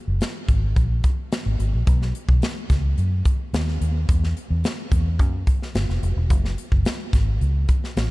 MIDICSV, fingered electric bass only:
0, 0, Header, 1, 2, 480
1, 0, Start_track
1, 0, Key_signature, 4, "major"
1, 0, Tempo, 554017
1, 1621, Time_signature, 4, 2, 24, 8
1, 7023, End_track
2, 0, Start_track
2, 0, Title_t, "Fingered electric bass"
2, 0, Program_c, 0, 33
2, 66, Note_on_c, 0, 30, 82
2, 165, Note_off_c, 0, 30, 0
2, 421, Note_on_c, 0, 32, 78
2, 623, Note_off_c, 0, 32, 0
2, 662, Note_on_c, 0, 34, 80
2, 864, Note_off_c, 0, 34, 0
2, 1265, Note_on_c, 0, 32, 72
2, 1364, Note_off_c, 0, 32, 0
2, 1383, Note_on_c, 0, 32, 73
2, 1483, Note_off_c, 0, 32, 0
2, 1504, Note_on_c, 0, 34, 76
2, 1604, Note_off_c, 0, 34, 0
2, 1622, Note_on_c, 0, 35, 94
2, 1824, Note_off_c, 0, 35, 0
2, 1980, Note_on_c, 0, 35, 91
2, 2081, Note_off_c, 0, 35, 0
2, 2338, Note_on_c, 0, 37, 85
2, 2542, Note_off_c, 0, 37, 0
2, 2579, Note_on_c, 0, 42, 85
2, 2782, Note_off_c, 0, 42, 0
2, 3062, Note_on_c, 0, 39, 78
2, 3264, Note_off_c, 0, 39, 0
2, 3302, Note_on_c, 0, 39, 75
2, 3504, Note_off_c, 0, 39, 0
2, 3543, Note_on_c, 0, 40, 89
2, 3745, Note_off_c, 0, 40, 0
2, 3902, Note_on_c, 0, 40, 90
2, 4003, Note_off_c, 0, 40, 0
2, 4261, Note_on_c, 0, 40, 72
2, 4499, Note_off_c, 0, 40, 0
2, 4499, Note_on_c, 0, 42, 82
2, 4703, Note_off_c, 0, 42, 0
2, 4981, Note_on_c, 0, 31, 88
2, 5083, Note_off_c, 0, 31, 0
2, 5102, Note_on_c, 0, 29, 82
2, 5204, Note_off_c, 0, 29, 0
2, 5223, Note_on_c, 0, 29, 86
2, 5324, Note_off_c, 0, 29, 0
2, 5342, Note_on_c, 0, 28, 77
2, 5460, Note_off_c, 0, 28, 0
2, 5460, Note_on_c, 0, 30, 95
2, 5664, Note_off_c, 0, 30, 0
2, 5822, Note_on_c, 0, 30, 77
2, 5923, Note_off_c, 0, 30, 0
2, 6179, Note_on_c, 0, 32, 76
2, 6383, Note_off_c, 0, 32, 0
2, 6422, Note_on_c, 0, 37, 85
2, 6625, Note_off_c, 0, 37, 0
2, 6902, Note_on_c, 0, 33, 88
2, 7023, Note_off_c, 0, 33, 0
2, 7023, End_track
0, 0, End_of_file